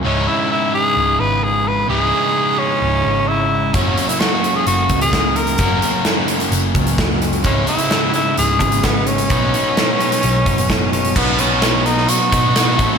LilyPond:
<<
  \new Staff \with { instrumentName = "Tenor saxophone" } { \time 4/4 \key cis \dorian \tempo 4 = 129 cis'8 e'8 e'8 gis'4 b'8 gis'8 b'8 | gis'4. cis'4. e'4 | cis'8. e'16 fis'8. gis'16 fis'8. gis'8. ais'8~ | ais'4 r2. |
cis'8 e'4 e'8 gis'4 b8 cis'8~ | cis'2.~ cis'8 cis'8 | \key b \mixolydian b8 cis'4 dis'8 fis'2 | }
  \new Staff \with { instrumentName = "Overdriven electric guitar" } { \time 4/4 \key cis \dorian <cis, gis, cis gis e'>1 | <cis, gis, cis gis e'>1 | <fis, cis fis ais cis' fis'>1 | <fis, cis fis ais cis' fis'>1 |
<cis, gis, cis gis e'>1 | <b, fis b dis' fis' b'>1 | \key b \mixolydian <b, fis b dis' fis' b'>8 <b dis' fis' b'>8 <b, fis b dis' fis' b'>4. <b dis' fis' b'>8 <b dis' fis' b'>8 <a, e a cis' e' a'>8 | }
  \new Staff \with { instrumentName = "Overdriven electric guitar" } { \time 4/4 \key cis \dorian <cis, gis, cis gis e'>1 | <cis, gis, cis gis e'>1 | <fis, cis fis ais cis' fis'>1 | <fis, cis fis ais cis' fis'>1 |
<cis, gis, cis gis e'>1 | <b, fis b dis' fis' b'>1 | \key b \mixolydian <b, fis b dis' fis' b'>2~ <b, fis b dis' fis' b'>8 <b, fis b dis' fis' b'>8 <b, fis b dis' fis' b'>8 <a, e a cis' e' a'>8 | }
  \new Staff \with { instrumentName = "Picked electric bass" } { \clef bass \time 4/4 \key cis \dorian cis,,8 r4. cis,,8 gis,,4. | cis,,8 r4. cis,,8 gis,,4. | fis,,8 r4. fis,,8 cis,4. | fis,,8 r4. fis,,8 cis,4. |
cis,,8 r4. cis,,8 gis,,4. | b,,8 r4. b,,8 fis,,4. | \key b \mixolydian b,,2 r8 b,4 a,,8 | }
  \new DrumStaff \with { instrumentName = "Drums" } \drummode { \time 4/4 r4 r4 r4 r4 | r4 r4 r4 r4 | <hh bd>8 hh16 hh16 <hh sn>8 hh8 hh8 <hh bd>16 hh16 <hh bd sn>8 hh16 hh16 | <hh bd>8 hh8 <hh sn>8 hh16 hh16 hh8 <hh bd>16 hh16 <hh bd sn>8 hh16 hh16 |
<hh bd>8 hh16 hh16 <hh sn>8 hh8 hh8 <hh bd>16 hh16 <hh bd sn>8 hh16 hh16 | <hh bd>8 hh8 <hh sn>8 hh16 hh16 hh8 <hh bd>16 hh16 <hh bd sn>8 hh16 hh16 | <cymc bd>8 hh8 <hh sn>8 hh16 sn16 hh8 <hh bd>8 <hh sn>8 <hh bd>8 | }
>>